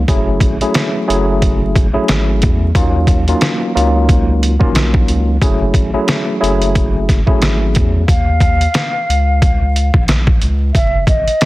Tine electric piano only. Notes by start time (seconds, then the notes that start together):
0.09 F#3 A3 C#4 E4 G#4
0.61 F#3 A3 C#4 E4 G#4
1.08 F#3 A3 C#4 E4 G#4
1.93 F#3 A3 C#4 E4 G#4
2.75 F#3 A#3 C#4 D#4 F4
3.28 F#3 A#3 C#4 D#4 F4
3.75 F#3 A#3 C#4 D#4 F4
4.59 F#3 A#3 C#4 D#4 F4
5.42 F#3 A3 C#4 E4 G#4
5.94 F#3 A3 C#4 E4 G#4
6.41 F#3 A3 C#4 E4 G#4
7.26 F#3 A3 C#4 E4 G#4